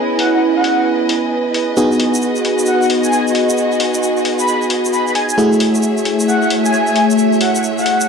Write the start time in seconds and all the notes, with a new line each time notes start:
Already playing: B3 C#4 E4 G#4 B4 C#5 D#5 G#5
0.19 F#5, open hi-hat
0.33 F#5
0.56 F#5
0.64 open hi-hat
1.09 open hi-hat
1.54 open hi-hat
1.77 B3 D#4 F#4 G#4, shaker
1.92 shaker
2.00 open hi-hat
2.14 shaker
2.22 D#5, shaker
2.36 shaker
2.45 open hi-hat
2.59 shaker
2.66 F#5, shaker
2.82 shaker
2.90 open hi-hat
3.04 G#5, shaker
3.13 shaker
3.28 shaker
3.35 open hi-hat
3.49 shaker
3.57 shaker
3.72 shaker
3.80 open hi-hat
3.94 shaker
4.03 shaker
4.17 shaker
4.25 open hi-hat
4.39 B5, shaker
4.48 shaker
4.62 shaker
4.70 open hi-hat
4.85 shaker
4.93 B5, shaker
5.07 B5, shaker
5.15 G#5, open hi-hat
5.29 G#5, shaker
5.38 A3 E4 F#4 G#4 C#5 E5, shaker
5.43 A3
5.53 shaker
5.60 open hi-hat
5.65 E5
5.75 shaker
5.83 shaker
5.98 shaker
6.05 open hi-hat
6.20 shaker
6.28 F#5, shaker
6.42 shaker
6.50 open hi-hat
6.65 G#5, shaker
6.73 shaker
6.87 G#5, shaker
6.96 open hi-hat
7.10 shaker
7.18 shaker
7.33 shaker
7.41 F#5, open hi-hat
7.55 F#5, shaker
7.63 shaker
7.78 F#5, shaker
7.86 open hi-hat
8.00 shaker